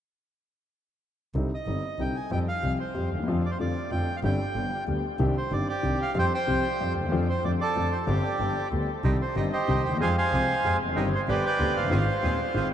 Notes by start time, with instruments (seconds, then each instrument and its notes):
1.35 grand piano C2 C3 D3 G3 C4 D#4, double bass C2
1.54 bandoneon D#5
1.67 double bass G1, grand piano G1 G2 D3 G3 C4 D#4
1.99 double bass C2, grand piano C2 C3 D3 G3 C4 D#4, bandoneon G5
2.16 bandoneon G#5
2.31 double bass F2, grand piano F2 F3 G3 C4 G4, bandoneon G5
2.48 bandoneon F5
2.63 grand piano C2 C3 F3 G3 C4 G4, double bass C2
2.80 bandoneon C5
2.94 grand piano F2 F3 G3 C4 G4, double bass F2
3.12 grand piano D2, double bass D#2
3.18 grand piano D#2
3.23 grand piano E2
3.27 double bass F2, grand piano F2 D3 F3 A3 C4 F4
3.46 bandoneon D5
3.51 bandoneon C5
3.59 grand piano F2 D3 F3 A3 C4 F4, double bass F2, bandoneon D5
3.91 double bass F2, grand piano F2 D3 F3 A3 C4 F4, bandoneon G5
4.17 bandoneon F5
4.23 double bass G1, grand piano G1 G2 D3 G3 C4 G4, bandoneon G5
4.55 double bass G1, grand piano G1 G2 D3 G3 B3 G4
4.87 double bass D2, grand piano D2 D3 G3 B3 G4
5.19 double bass C2, grand piano C2 C3 D#3 C4 D4 G4
5.37 bandoneon C5
5.51 grand piano G1 G2 D#3 C4 D4 G4, double bass G1, bandoneon D5
5.69 bandoneon G4 D5
5.82 grand piano C2 C3 D#3 C4 D4 G4, double bass C2
6.02 bandoneon F5
6.14 grand piano F2 F3 G3 C4 G4, double bass F2
6.19 bandoneon C5 G5
6.34 bandoneon C5 G5
6.47 grand piano C2 C3 F3 G3 C4 G4, double bass C2
6.80 grand piano F2 F3 G3 C4 G4, double bass F2
6.96 double bass D#2
7.01 grand piano D2 D#2
7.08 grand piano E2 F2 D3 F3 A3 C4, double bass F2
7.12 grand piano F4
7.30 bandoneon C5
7.44 double bass F2, grand piano F2 D3 F3 A3 C4 F4, bandoneon D5
7.61 bandoneon A4 D5
7.76 grand piano F2 D3 F3 A3 C4 F4, double bass F2
7.92 bandoneon C5
8.07 grand piano G1 G2 D3 G3 C4 G4, double bass G1, bandoneon G4 D5
8.39 grand piano G1 G2 D3 G3 B3 G4, double bass G1
8.72 double bass D2, grand piano D2 D3 G3 B3 G4
9.04 grand piano C2 C3 D#3 G3 C4 G4, double bass C2, bandoneon C4 D#4 G4
9.22 bandoneon C5
9.36 grand piano G1 G2 D#3 G3 C4 G4, double bass G1, bandoneon C4 D#4 G4 D#5
9.53 bandoneon G4 C5 D#5
9.68 grand piano C2 C3 D#3 G3 C4 G4, double bass C2, bandoneon C4 D#4 G4
9.84 double bass D#2, bandoneon G5
9.89 grand piano D2
9.93 grand piano D#2 E2
10.00 grand piano F2 F3 G#3 C4 G#4, double bass F2, bandoneon C4 F4 G#4 C5 F5 G#5
10.18 bandoneon C5 F5 G#5
10.33 double bass C2, grand piano C2 C3 F3 G#3 C4 G#4, bandoneon C4 F4 G#4
10.64 double bass F2, grand piano F2 F3 G#3 C4 G#4, bandoneon C4 F4 G#4
10.81 double bass F1
10.85 grand piano E2 F2
10.92 grand piano G1 F#2 G2 D#3 G3 G4, bandoneon C4 D#4 G4
10.96 double bass G1, grand piano C4
11.15 bandoneon C5
11.28 grand piano G1 G2 D3 G3 B3 G4, double bass G1, bandoneon B3 D4 G4 B4 D5
11.46 bandoneon B4 D5 G5
11.59 grand piano D2 D3 G3 B3 G4, double bass D2, bandoneon B3 D4 G4
11.76 grand piano F1, double bass F#1, bandoneon C5 F5
11.83 grand piano F#1
11.87 grand piano G1 G#1 G#2 D#3 G#3 C4
11.91 double bass G#1, bandoneon C4 F4 G#4, grand piano F4
12.23 grand piano D#1 D#2 D#3 G#3 C4 F4, double bass D#2, bandoneon C4 F4 G#4
12.54 grand piano G#1 G#2 D#3 G#3 C4 F4, double bass G#1, bandoneon C4 F4 G#4